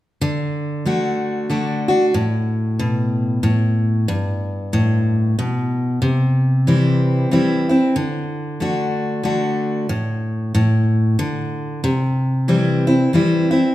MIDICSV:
0, 0, Header, 1, 2, 480
1, 0, Start_track
1, 0, Tempo, 645161
1, 155, Time_signature, 3, 2, 24, 8
1, 10229, End_track
2, 0, Start_track
2, 0, Title_t, "Steel-string acoustic guitar"
2, 0, Program_c, 0, 25
2, 160, Note_on_c, 0, 50, 79
2, 627, Note_off_c, 0, 50, 0
2, 636, Note_on_c, 0, 50, 51
2, 642, Note_on_c, 0, 57, 50
2, 642, Note_on_c, 0, 62, 61
2, 646, Note_on_c, 0, 66, 55
2, 1097, Note_off_c, 0, 50, 0
2, 1100, Note_off_c, 0, 57, 0
2, 1100, Note_off_c, 0, 62, 0
2, 1102, Note_off_c, 0, 66, 0
2, 1113, Note_on_c, 0, 50, 55
2, 1118, Note_on_c, 0, 57, 53
2, 1120, Note_on_c, 0, 62, 61
2, 1126, Note_on_c, 0, 66, 53
2, 1391, Note_off_c, 0, 50, 0
2, 1392, Note_off_c, 0, 66, 0
2, 1393, Note_off_c, 0, 57, 0
2, 1394, Note_off_c, 0, 62, 0
2, 1401, Note_on_c, 0, 66, 63
2, 1413, Note_on_c, 0, 62, 47
2, 1587, Note_off_c, 0, 66, 0
2, 1593, Note_off_c, 0, 62, 0
2, 1595, Note_on_c, 0, 45, 76
2, 2079, Note_on_c, 0, 47, 69
2, 2517, Note_off_c, 0, 45, 0
2, 2539, Note_off_c, 0, 47, 0
2, 2552, Note_on_c, 0, 45, 72
2, 3015, Note_off_c, 0, 45, 0
2, 3038, Note_on_c, 0, 43, 82
2, 3520, Note_on_c, 0, 45, 70
2, 3959, Note_off_c, 0, 43, 0
2, 3979, Note_off_c, 0, 45, 0
2, 4007, Note_on_c, 0, 47, 72
2, 4463, Note_off_c, 0, 47, 0
2, 4477, Note_on_c, 0, 48, 77
2, 4963, Note_on_c, 0, 52, 48
2, 4964, Note_on_c, 0, 55, 52
2, 4969, Note_on_c, 0, 60, 62
2, 4970, Note_on_c, 0, 64, 64
2, 5398, Note_off_c, 0, 48, 0
2, 5421, Note_off_c, 0, 52, 0
2, 5421, Note_off_c, 0, 55, 0
2, 5424, Note_off_c, 0, 60, 0
2, 5424, Note_off_c, 0, 64, 0
2, 5442, Note_on_c, 0, 52, 58
2, 5444, Note_on_c, 0, 55, 53
2, 5452, Note_on_c, 0, 60, 59
2, 5452, Note_on_c, 0, 64, 60
2, 5715, Note_off_c, 0, 64, 0
2, 5716, Note_off_c, 0, 52, 0
2, 5717, Note_off_c, 0, 55, 0
2, 5721, Note_off_c, 0, 60, 0
2, 5724, Note_on_c, 0, 64, 52
2, 5733, Note_on_c, 0, 60, 49
2, 5908, Note_off_c, 0, 64, 0
2, 5913, Note_off_c, 0, 60, 0
2, 5921, Note_on_c, 0, 50, 76
2, 6391, Note_off_c, 0, 50, 0
2, 6400, Note_on_c, 0, 50, 52
2, 6403, Note_on_c, 0, 57, 54
2, 6412, Note_on_c, 0, 62, 62
2, 6413, Note_on_c, 0, 66, 65
2, 6859, Note_off_c, 0, 50, 0
2, 6861, Note_off_c, 0, 57, 0
2, 6865, Note_off_c, 0, 62, 0
2, 6865, Note_off_c, 0, 66, 0
2, 6870, Note_on_c, 0, 50, 56
2, 6881, Note_on_c, 0, 57, 59
2, 6882, Note_on_c, 0, 66, 55
2, 6884, Note_on_c, 0, 62, 53
2, 7334, Note_off_c, 0, 50, 0
2, 7339, Note_off_c, 0, 57, 0
2, 7339, Note_off_c, 0, 66, 0
2, 7341, Note_off_c, 0, 62, 0
2, 7360, Note_on_c, 0, 45, 77
2, 7837, Note_off_c, 0, 45, 0
2, 7846, Note_on_c, 0, 45, 78
2, 8301, Note_off_c, 0, 45, 0
2, 8324, Note_on_c, 0, 50, 80
2, 8780, Note_off_c, 0, 50, 0
2, 8807, Note_on_c, 0, 48, 83
2, 9285, Note_on_c, 0, 52, 59
2, 9288, Note_on_c, 0, 55, 53
2, 9291, Note_on_c, 0, 60, 55
2, 9292, Note_on_c, 0, 64, 61
2, 9556, Note_off_c, 0, 52, 0
2, 9558, Note_off_c, 0, 55, 0
2, 9559, Note_off_c, 0, 60, 0
2, 9560, Note_off_c, 0, 64, 0
2, 9575, Note_on_c, 0, 64, 55
2, 9584, Note_on_c, 0, 60, 39
2, 9722, Note_off_c, 0, 48, 0
2, 9753, Note_off_c, 0, 64, 0
2, 9757, Note_off_c, 0, 60, 0
2, 9769, Note_on_c, 0, 52, 53
2, 9775, Note_on_c, 0, 55, 54
2, 9778, Note_on_c, 0, 60, 60
2, 9784, Note_on_c, 0, 64, 62
2, 10038, Note_off_c, 0, 52, 0
2, 10041, Note_off_c, 0, 55, 0
2, 10041, Note_off_c, 0, 64, 0
2, 10043, Note_off_c, 0, 60, 0
2, 10050, Note_on_c, 0, 64, 59
2, 10064, Note_on_c, 0, 60, 46
2, 10229, Note_off_c, 0, 60, 0
2, 10229, Note_off_c, 0, 64, 0
2, 10229, End_track
0, 0, End_of_file